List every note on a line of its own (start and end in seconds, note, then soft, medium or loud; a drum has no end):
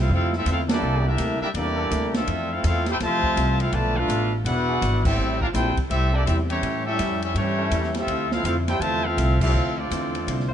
0.00 0.11 A3 medium
0.00 0.11 C4 medium
0.00 0.11 E4 medium
0.00 0.11 F4 medium
0.00 0.11 A4 medium
0.00 0.11 F5 loud
0.09 0.45 F2 medium
0.09 0.34 D3 medium
0.09 0.35 F3 medium
0.09 0.35 C4 medium
0.09 0.33 C4 medium
0.09 0.35 E4 medium
0.13 0.33 A3 medium
0.13 0.33 C4 medium
0.13 0.33 E4 medium
0.13 0.33 F4 medium
0.13 0.33 A4 medium
0.13 0.33 F5 loud
0.33 snare soft
0.37 0.48 A3 medium
0.37 0.48 C4 medium
0.37 0.48 E4 medium
0.37 0.48 F4 medium
0.37 0.47 A4 medium
0.37 0.47 E5 loud
0.45 0.81 E2 medium
0.45 0.70 D3 medium
0.45 0.70 F3 medium
0.45 0.71 C4 medium
0.45 0.71 E4 medium
0.45 hi-hat pedal medium
0.45 ride medium
0.49 0.60 A3 medium
0.49 0.59 C4 medium
0.49 0.61 C4 medium
0.49 0.61 E4 medium
0.49 0.59 F4 medium
0.49 0.60 A4 medium
0.49 0.61 F5 loud
0.69 1.16 E3 loud
0.69 1.04 G3 medium
0.69 1.16 A#3 loud
0.69 1.04 A#3 medium
0.69 1.16 D4 loud
0.69 1.05 D4 medium
0.69 1.04 E4 medium
0.69 1.04 G4 medium
0.69 1.16 A4 loud
0.69 1.04 D5 loud
0.69 snare medium
0.69 ride medium
0.82 1.17 C2 medium
0.82 1.06 C3 medium
0.82 1.07 A#3 medium
0.82 1.08 E4 medium
0.82 1.08 A4 medium
1.07 1.42 G3 loud
1.07 1.41 A#3 medium
1.07 1.41 D4 medium
1.07 1.41 E4 medium
1.07 1.41 G4 medium
1.07 1.41 A#4 loud
1.07 1.41 E5 loud
1.18 1.40 D2 loud
1.18 1.42 C3 medium
1.18 1.43 A#3 medium
1.18 1.43 E4 medium
1.18 1.44 A4 medium
1.18 hi-hat pedal medium
1.18 ride medium
1.41 1.49 G3 medium
1.41 1.48 A#3 medium
1.41 1.48 D4 medium
1.41 1.48 E4 medium
1.41 1.48 G4 medium
1.41 1.48 A#4 medium
1.41 1.48 E5 loud
1.41 muted upright bass stroke soft
1.54 1.90 E2 loud
1.54 1.79 C3 soft
1.54 2.11 G3 medium
1.54 1.80 A#3 medium
1.54 2.11 A#3 medium
1.54 2.12 D4 medium
1.54 2.11 E4 medium
1.54 1.80 E4 medium
1.54 2.11 G4 medium
1.54 1.81 A4 medium
1.54 2.11 D5 loud
1.54 ride medium
1.76 2.24 E3 loud
1.76 2.24 A#3 loud
1.76 2.24 D4 medium
1.76 2.24 A4 loud
1.91 2.26 D2 medium
1.91 2.15 C3 medium
1.91 2.15 A#3 medium
1.91 2.16 E4 medium
1.91 2.16 A4 medium
1.91 hi-hat pedal medium
1.91 ride medium
2.14 2.52 A3 medium
2.14 2.51 C4 medium
2.14 2.52 C4 medium
2.14 2.51 F4 medium
2.14 2.51 A4 medium
2.14 2.51 E5 loud
2.14 snare medium
2.14 ride medium
2.19 2.53 D4 medium
2.26 2.51 F2 medium
2.26 2.63 F2 medium
2.26 2.52 E3 medium
2.26 2.53 A3 medium
2.26 2.53 C4 medium
2.26 ride medium
2.52 2.66 A3 medium
2.52 2.65 C4 medium
2.52 2.66 C4 medium
2.52 2.65 E4 medium
2.52 2.65 F4 medium
2.52 2.65 A4 medium
2.52 2.65 F5 loud
2.63 2.99 E2 loud
2.63 2.88 F2 medium
2.63 2.88 E3 medium
2.63 2.89 A3 medium
2.63 2.89 C4 medium
2.63 2.87 C4 medium
2.63 2.87 F4 loud
2.63 2.87 F5 loud
2.63 hi-hat pedal medium
2.63 ride medium
2.67 2.87 A3 medium
2.67 2.87 C4 loud
2.67 2.87 E4 medium
2.67 2.87 A4 medium
2.86 2.95 G4 medium
2.86 snare soft
2.86 ride medium
2.91 2.96 E4 loud
2.91 2.96 A4 medium
2.91 2.96 C5 loud
2.91 2.96 G5 loud
3.00 3.35 D2 medium
3.00 3.24 F2 medium
3.00 3.56 C3 loud
3.00 3.25 E3 medium
3.00 3.56 F3 loud
3.00 3.25 A3 medium
3.00 3.57 A3 medium
3.00 3.26 C4 medium
3.00 3.57 C5 loud
3.00 3.57 A5 loud
3.00 snare soft
3.00 ride medium
3.04 3.58 F4 loud
3.04 3.58 E5 loud
3.23 3.70 F3 loud
3.23 3.71 C4 medium
3.23 3.70 F4 loud
3.23 3.70 A4 loud
3.23 kick medium
3.36 3.72 C2 medium
3.36 3.60 F2 medium
3.36 3.61 E3 medium
3.36 3.61 A3 medium
3.36 3.62 C4 medium
3.36 hi-hat pedal soft
3.36 ride medium
3.60 3.73 A3 medium
3.60 3.74 C4 medium
3.60 3.74 E4 loud
3.60 3.74 F4 medium
3.60 3.74 A4 medium
3.60 3.74 F5 loud
3.60 ride medium
3.72 4.08 B1 medium
3.72 3.97 B2 medium
3.72 3.97 D3 loud
3.72 3.97 F3 medium
3.72 3.97 F3 loud
3.72 3.98 A3 medium
3.72 3.96 A3 loud
3.72 3.98 D4 medium
3.72 3.96 F4 medium
3.72 3.96 B4 medium
3.72 3.96 D5 loud
3.72 3.96 A5 loud
3.72 ride medium
3.96 4.33 A3 loud
3.96 4.32 D4 loud
3.96 4.34 D4 medium
3.96 4.33 F4 medium
3.96 4.33 A4 loud
3.96 4.33 B4 medium
3.96 4.32 F5 loud
4.08 4.44 A1 loud
4.08 4.33 B2 medium
4.08 4.34 F3 medium
4.08 4.34 A3 medium
4.08 4.34 D4 medium
4.08 hi-hat pedal medium
4.08 ride medium
4.45 4.80 E1 medium
4.45 4.69 E3 medium
4.45 4.70 B3 medium
4.45 5.01 B3 loud
4.45 5.01 D4 medium
4.45 4.71 D4 medium
4.45 5.02 E4 loud
4.45 5.01 F#4 medium
4.45 4.71 G#4 medium
4.45 5.02 B4 loud
4.45 5.02 D5 medium
4.45 5.01 F#5 loud
4.45 ride medium
4.68 4.78 E3 loud
4.68 4.78 B3 medium
4.68 4.78 D4 medium
4.68 4.78 G#4 loud
4.82 5.17 G#1 medium
4.82 5.06 E3 medium
4.82 5.07 B3 medium
4.82 5.07 D4 medium
4.82 5.07 G#4 medium
4.82 hi-hat pedal medium
4.82 ride medium
5.05 5.39 G3 medium
5.05 5.39 C4 medium
5.05 5.39 C4 loud
5.05 5.40 E4 medium
5.05 5.39 G4 medium
5.05 5.39 A4 medium
5.05 5.39 E5 loud
5.05 kick medium
5.05 crash medium
5.17 5.53 A1 medium
5.17 5.42 A2 medium
5.17 5.43 G3 medium
5.17 5.43 C4 medium
5.17 5.44 E4 medium
5.41 5.48 D4 medium
5.41 5.48 F4 medium
5.41 5.48 G4 medium
5.41 5.47 A#4 medium
5.41 5.48 F5 loud
5.41 kick medium
5.54 5.76 A#1 loud
5.54 5.79 A2 medium
5.54 5.79 G3 medium
5.54 5.76 C4 loud
5.54 5.79 C4 medium
5.54 5.76 E4 medium
5.54 5.79 E4 medium
5.54 5.76 G4 medium
5.54 5.76 A4 medium
5.54 5.76 C5 medium
5.54 5.76 G5 loud
5.54 snare soft
5.54 hi-hat pedal medium
5.54 ride medium
5.77 muted upright bass stroke soft
5.77 kick medium
5.77 ride medium
5.89 6.26 C2 medium
5.89 6.14 A2 soft
5.89 6.15 G3 medium
5.89 6.12 C4 medium
5.89 6.16 C4 medium
5.89 6.13 C4 medium
5.89 6.16 E4 medium
5.89 6.12 G4 medium
5.89 6.12 A4 loud
5.89 6.12 E5 loud
5.89 ride medium
5.93 6.14 G3 medium
5.93 6.14 E4 medium
6.13 6.23 G3 loud
6.13 6.27 A#3 medium
6.13 6.22 C4 medium
6.13 6.27 D4 medium
6.13 6.23 E4 medium
6.13 6.27 E4 medium
6.13 6.26 G4 medium
6.13 6.23 A4 loud
6.13 6.27 D5 loud
6.25 6.62 E2 loud
6.25 6.51 A2 medium
6.25 6.51 G3 medium
6.25 6.37 C4 medium
6.25 6.52 C4 medium
6.25 6.39 C4 medium
6.25 6.52 E4 medium
6.25 6.38 G4 medium
6.25 6.37 A4 medium
6.25 6.36 E5 medium
6.25 hi-hat pedal medium
6.25 ride medium
6.30 6.40 G3 medium
6.30 6.40 E4 medium
6.49 6.85 E3 medium
6.49 6.85 G3 medium
6.49 6.84 A3 medium
6.49 6.85 C#4 medium
6.49 6.84 E4 medium
6.49 6.84 G4 medium
6.49 6.84 C#5 loud
6.49 ride medium
6.62 6.87 A2 medium
6.62 6.98 A2 medium
6.62 6.88 G3 medium
6.62 6.88 C#4 medium
6.62 6.89 E4 medium
6.62 ride medium
6.86 7.22 G3 medium
6.86 7.20 C#4 medium
6.86 7.22 E4 medium
6.86 7.20 G4 medium
6.86 7.20 A4 loud
6.86 7.21 E5 loud
6.90 7.22 C#4 medium
6.99 7.34 F2 loud
6.99 7.24 A2 medium
6.99 7.24 G3 medium
6.99 7.25 C#4 medium
6.99 7.25 E4 medium
6.99 hi-hat pedal medium
6.99 ride medium
7.22 7.36 G3 medium
7.22 7.36 C#4 medium
7.22 7.36 E4 medium
7.22 7.36 G4 medium
7.22 7.35 A4 medium
7.22 7.36 E5 loud
7.22 ride medium
7.34 7.70 G2 medium
7.34 7.60 A2 medium
7.34 7.92 E3 medium
7.34 7.61 G3 medium
7.34 7.92 G3 medium
7.34 7.92 A3 medium
7.34 7.61 C#4 medium
7.34 7.93 C#4 medium
7.34 7.92 E4 medium
7.34 7.62 E4 medium
7.34 7.92 G4 medium
7.34 7.93 C#5 loud
7.34 ride medium
7.57 8.05 G3 loud
7.57 8.06 C#4 loud
7.57 8.05 E4 loud
7.57 8.06 A4 loud
7.71 8.06 E2 medium
7.71 7.97 A2 medium
7.71 7.97 G3 medium
7.71 7.98 C#4 medium
7.71 7.98 E4 medium
7.71 hi-hat pedal medium
7.71 ride medium
7.83 snare soft
7.94 8.27 A3 medium
7.94 8.27 C4 medium
7.94 8.27 G4 medium
7.94 snare medium
7.94 ride medium
7.99 8.28 C4 medium
7.99 8.28 F4 medium
7.99 8.28 A4 loud
7.99 8.28 E5 loud
8.07 8.43 D2 medium
8.07 8.33 D3 medium
8.07 8.34 F3 medium
8.07 8.34 C4 medium
8.07 ride medium
8.12 8.35 E4 medium
8.30 8.44 A3 medium
8.30 8.45 C4 medium
8.30 8.46 C4 medium
8.30 8.46 E4 medium
8.30 8.45 F4 medium
8.30 8.46 A4 medium
8.30 8.34 E5 medium
8.30 8.45 F5 loud
8.30 snare medium
8.44 8.79 F2 medium
8.44 8.70 D3 medium
8.44 8.70 F3 medium
8.44 8.56 A3 medium
8.44 8.56 C4 medium
8.44 8.70 C4 medium
8.44 8.57 C4 medium
8.44 8.57 E4 medium
8.44 8.71 E4 medium
8.44 8.56 F4 medium
8.44 8.57 A4 medium
8.44 8.56 F5 loud
8.44 hi-hat pedal medium
8.44 ride medium
8.67 8.77 F3 loud
8.67 8.77 D4 medium
8.67 8.78 E4 medium
8.67 8.81 E4 medium
8.67 8.81 G4 medium
8.67 8.81 A4 medium
8.67 8.77 C5 loud
8.67 8.80 C5 medium
8.67 8.81 G5 loud
8.67 snare soft
8.67 ride medium
8.79 9.16 E2 medium
8.79 9.06 D3 soft
8.79 9.06 F3 medium
8.79 9.05 A3 medium
8.79 9.07 C4 medium
8.79 9.04 F4 loud
8.79 9.04 C5 loud
8.79 9.04 E5 loud
8.79 9.04 A5 loud
8.79 ride medium
8.83 9.06 C3 medium
8.83 9.07 E4 medium
9.05 9.39 A3 medium
9.05 9.41 C4 loud
9.05 9.40 C4 medium
9.05 9.40 F4 medium
9.05 9.40 A4 medium
9.05 9.40 E5 medium
9.05 9.40 F5 loud
9.17 9.53 C2 loud
9.17 9.42 D3 medium
9.17 9.42 F3 medium
9.17 9.43 C4 medium
9.17 9.43 E4 medium
9.17 hi-hat pedal medium
9.17 ride medium
9.40 9.51 F3 loud
9.40 9.75 A3 medium
9.40 9.75 C4 medium
9.40 9.76 C4 medium
9.40 9.51 D4 medium
9.40 9.51 E4 medium
9.40 9.75 F4 medium
9.40 9.50 G4 loud
9.40 9.75 A4 medium
9.40 9.75 E5 medium
9.40 9.75 F5 loud
9.40 kick loud
9.40 crash medium
9.53 9.90 D2 loud
9.53 9.78 D3 medium
9.53 9.79 F3 medium
9.53 9.80 C4 medium
9.53 9.80 E4 medium
9.78 10.52 A3 medium
9.78 10.51 C4 medium
9.78 10.52 D4 medium
9.78 10.51 F4 medium
9.78 10.52 F4 medium
9.78 10.51 A4 medium
9.78 10.51 D5 loud
9.90 10.26 E2 medium
9.90 10.16 D3 medium
9.90 10.16 F3 medium
9.90 10.16 C4 medium
9.90 10.17 E4 medium
9.90 hi-hat pedal medium
9.90 ride medium
10.15 ride medium
10.27 10.54 C2 medium
10.27 10.52 D3 medium
10.27 10.52 F3 medium
10.27 10.53 C4 medium
10.27 10.53 E4 medium
10.27 ride medium
10.40 snare soft
10.49 10.54 F3 loud
10.49 10.54 D4 loud
10.49 10.54 E4 loud
10.49 10.54 C5 loud